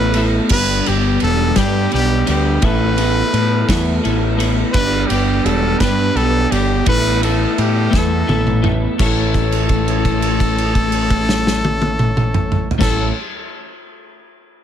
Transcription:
Already playing: picked electric bass A1, clean electric guitar A2 E3 A3 B3 E4 A4, transistor combo organ A4 E5 B5, trumpet B4
0.14 clean electric guitar A2 E3 A3 B3, ride
0.18 clean electric guitar E4 A4
0.49 picked electric bass G1, clean electric guitar G2 D3 G3 B3, transistor combo organ G4 D5, trumpet B4, kick, crash
0.54 clean electric guitar D4 G4
0.86 picked electric bass G1, clean electric guitar G2 D3 G3 B3 D4 G4, trumpet G4, ride
1.20 picked electric bass E1, trumpet A4, ride
1.56 clean electric guitar G2 D3 G3 B3 D4 G4, picked electric bass G2, trumpet G4, kick, snare, ride
1.92 picked electric bass B1, clean electric guitar G2 D3 G3 B3 D4 G4, trumpet G4, ride
2.27 picked electric bass D2, clean electric guitar G2 D3 G3 B3 D4 G4, trumpet G4, ride
2.61 picked electric bass A1, clean electric guitar A2 E3 A3 B3 E4 A4, transistor combo organ A4 E5, kick, ride
2.65 trumpet B4
2.97 clean electric guitar A2 E3 A3 B3 E4 A4, ride
3.33 picked electric bass A2, ride
3.68 picked electric bass E2, clean electric guitar A2 E3 A3 B3 E4 A4, kick, snare, ride
4.02 picked electric bass A1, clean electric guitar A2 E3 A3 B3 E4 A4, ride
4.37 clean electric guitar A2 E3 A3 B3 E4 A4, ride
4.71 picked electric bass G1, clean electric guitar G2 D3 G3 B3 D4, transistor combo organ G4 D5, trumpet B4, kick, ride
4.75 clean electric guitar G4
5.07 picked electric bass G1, clean electric guitar G2 D3 G3 B3 D4, trumpet G4, ride
5.11 clean electric guitar G4
5.45 picked electric bass E1, trumpet A4, ride
5.79 clean electric guitar G2 D3 G3 B3 D4 G4, picked electric bass G2, trumpet B4, kick, snare, ride
6.15 picked electric bass B1, clean electric guitar G2 D3 G3 B3 D4 G4, trumpet A4, ride
6.50 picked electric bass G1, clean electric guitar G2 D3 G3 B3 D4 G4, trumpet G4, ride
6.85 picked electric bass A1, clean electric guitar A2 E3 A3 B3 E4 A4, transistor combo organ A4 E5, trumpet B4, kick, ride
7.22 clean electric guitar A2 E3 A3 B3 E4 A4, trumpet A4, ride
7.58 picked electric bass A2, trumpet G4, ride
7.90 picked electric bass E2, clean electric guitar A2 E3 A3 B3, kick, snare
7.95 clean electric guitar E4 A4, trumpet A4
8.27 picked electric bass A1, clean electric guitar A2 E3 A3 B3 E4 A4, high tom
8.47 mid tom
8.62 clean electric guitar A2 E3 A3 B3 E4 A4, mid tom
8.98 picked electric bass A1, clean electric guitar A2 E3 A3 C#4 E4, transistor combo organ A3 E4 C#5, trumpet A4, kick, crash
9.02 clean electric guitar A4
9.34 kick, crash
9.52 crash
9.69 kick, crash
9.88 crash
10.05 kick, crash
10.22 crash
10.40 kick, crash
10.58 crash
10.75 kick, crash
10.92 crash
11.10 kick, crash
11.29 snare
11.47 snare
11.65 high tom
11.82 high tom
11.99 mid tom
12.17 mid tom
12.34 mid tom
12.52 mid tom
12.71 floor tom
12.78 picked electric bass A1, clean electric guitar A2 E3 A3 C#4 E4, transistor combo organ A3 E4 C#5, trumpet A4, kick, snare, crash
12.82 clean electric guitar A4

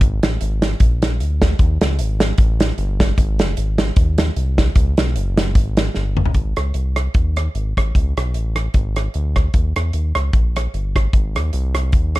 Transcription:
0.01 analog synth bass G#1, kick, closed hi-hat
0.23 analog synth bass A1, snare, closed hi-hat
0.41 analog synth bass G#1, closed hi-hat
0.62 snare, closed hi-hat
0.80 analog synth bass A#1, kick, closed hi-hat
1.02 snare, closed hi-hat
1.20 analog synth bass D2, closed hi-hat
1.42 kick, snare, closed hi-hat
1.59 analog synth bass D#2, kick, closed hi-hat
1.81 analog synth bass C#2, snare, closed hi-hat
1.99 analog synth bass G#1, closed hi-hat
2.20 snare, closed hi-hat
2.38 analog synth bass A1, kick, closed hi-hat
2.60 snare, closed hi-hat
2.78 analog synth bass G1, closed hi-hat
3.00 kick, snare, closed hi-hat
3.18 analog synth bass G#1, kick, closed hi-hat
3.39 analog synth bass F#1, snare, closed hi-hat
3.57 analog synth bass G#1, closed hi-hat
3.78 snare, closed hi-hat
3.96 analog synth bass D#2, kick, closed hi-hat
4.18 snare, closed hi-hat
4.36 analog synth bass C2, closed hi-hat
4.58 kick, snare, closed hi-hat
4.75 analog synth bass C#2, kick, closed hi-hat
4.97 analog synth bass B1, snare, closed hi-hat
5.16 analog synth bass F#1, closed hi-hat
5.37 snare, closed hi-hat
5.55 analog synth bass G#1, kick, closed hi-hat
5.77 snare, closed hi-hat
5.95 analog synth bass G1, snare
6.17 mid tom
6.25 floor tom
6.34 analog synth bass G#1, kick, closed hi-hat
6.56 analog synth bass C#2, cross-stick, closed hi-hat
6.74 analog synth bass C2, closed hi-hat
6.96 cross-stick, closed hi-hat
7.14 analog synth bass D#2, kick, closed hi-hat
7.36 cross-stick, closed hi-hat
7.55 analog synth bass G#1, closed hi-hat
7.77 analog synth bass A1, kick, cross-stick, closed hi-hat
7.95 analog synth bass C#2, kick, closed hi-hat
8.17 analog synth bass B1, cross-stick, closed hi-hat
8.34 analog synth bass A1, closed hi-hat
8.56 cross-stick, closed hi-hat
8.74 analog synth bass G#1, kick, closed hi-hat
8.96 cross-stick, closed hi-hat
9.14 analog synth bass D2, closed hi-hat
9.36 kick, cross-stick, closed hi-hat
9.54 analog synth bass D#2, kick, closed hi-hat
9.76 analog synth bass E2, cross-stick, closed hi-hat
9.93 analog synth bass D#2, closed hi-hat
10.15 analog synth bass C#2, cross-stick, closed hi-hat
10.33 analog synth bass A#1, kick, closed hi-hat
10.56 cross-stick, closed hi-hat
10.74 analog synth bass G1, closed hi-hat
10.96 kick, cross-stick, closed hi-hat
11.13 analog synth bass G#1, kick, closed hi-hat
11.36 analog synth bass D#2, cross-stick, closed hi-hat
11.53 analog synth bass C2, closed hi-hat
11.75 cross-stick, closed hi-hat
11.92 analog synth bass D#2, kick, closed hi-hat
12.15 cross-stick, closed hi-hat

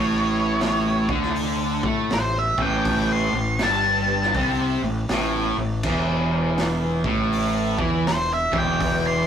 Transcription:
Already playing: fingered electric bass A1, overdriven electric guitar A2, lead electric guitar C#5
0.61 snare, open hi-hat
1.09 fingered electric bass D2, overdriven electric guitar D3, kick
1.23 snare
1.36 open hi-hat
1.83 fingered electric bass A2, overdriven electric guitar A3, kick
2.10 fingered electric bass A1, overdriven electric guitar A2, lead electric guitar C5, snare, open hi-hat
2.39 lead electric guitar E5
2.58 fingered electric bass A1, overdriven electric guitar A2, kick
2.63 lead electric guitar G5
2.85 kick, open hi-hat
3.12 lead electric guitar C6
3.33 fingered electric bass A1, overdriven electric guitar A2
3.59 fingered electric bass G1, overdriven electric guitar G2, snare, open hi-hat
3.63 lead electric guitar A5
4.23 snare
4.34 fingered electric bass C2, overdriven electric guitar C3, kick, open hi-hat
4.82 fingered electric bass A1, overdriven electric guitar A2
5.09 fingered electric bass A1, overdriven electric guitar A2, snare, open hi-hat
5.57 fingered electric bass A1, overdriven electric guitar A2
5.83 fingered electric bass E1, overdriven electric guitar E2, kick, crash
6.58 snare, open hi-hat
7.04 fingered electric bass A1, overdriven electric guitar A2, kick
7.32 open hi-hat
7.79 fingered electric bass E2, overdriven electric guitar E3, kick
8.07 fingered electric bass E1, overdriven electric guitar E2, lead electric guitar C5, snare, open hi-hat
8.34 lead electric guitar E5
8.52 fingered electric bass E1, overdriven electric guitar E2, kick
8.58 lead electric guitar G5
8.81 kick, open hi-hat
9.07 lead electric guitar C6

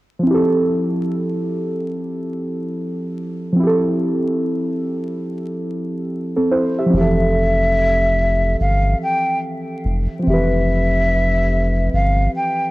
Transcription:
0.19 synth keys F3 C4
0.27 synth keys E4 G4
0.34 synth keys A4
3.52 synth keys F3 C4
3.60 synth keys E4 G4
3.67 synth keys A4
6.36 synth keys C4 A4
6.51 synth keys E4 C5
6.79 synth keys G4 E5
6.86 synth keys F3 C4
6.93 sub bass F1, synth keys E3 G4, flute E5
7.01 synth keys A4
8.60 sub bass G1, flute F5
9.03 flute G5
9.85 sub bass F1
10.19 synth keys F3 C4
10.27 sub bass F1, synth keys E3 G4, flute E5
10.33 synth keys B4
11.93 sub bass G1, flute F5
12.36 flute G5

